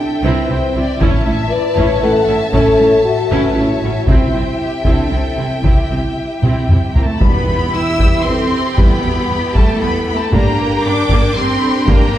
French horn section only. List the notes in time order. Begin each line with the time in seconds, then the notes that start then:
Already playing: D4
0.24 C4
1.01 E4
1.50 B4
2.02 A4
2.51 A4
3.03 F#4
3.55 E4
3.81 F#4
4.08 E4
4.84 D4
5.10 C4
5.61 E4
7.71 G4
7.97 B4
8.25 A4
8.77 G4
9.05 F#4
9.31 G4
9.57 A4
10.34 G4
10.60 A#4
11.37 G4
11.63 A4
11.90 A#4